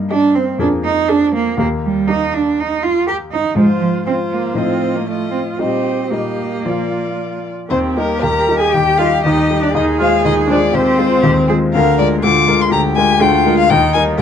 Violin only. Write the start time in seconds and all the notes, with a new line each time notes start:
0.11 D#5
1.09 A#4
2.08 A#4
3.09 A#4
3.58 C5
4.06 C5
4.58 D#5
5.10 D#5
5.60 D#5
6.14 D#5
6.68 D5
7.70 C5
7.98 A#4
8.22 A#5
8.59 G#5
8.73 G5
8.98 F5
9.24 D#5
9.63 D5
9.76 D#5
10.01 F5
10.25 D#5
10.50 D5
10.75 C5
11.73 F5
11.99 D5
12.23 D6
12.61 C6
12.72 A#5
12.96 G#5
13.22 G5
13.58 F5
13.70 G5
13.94 G#5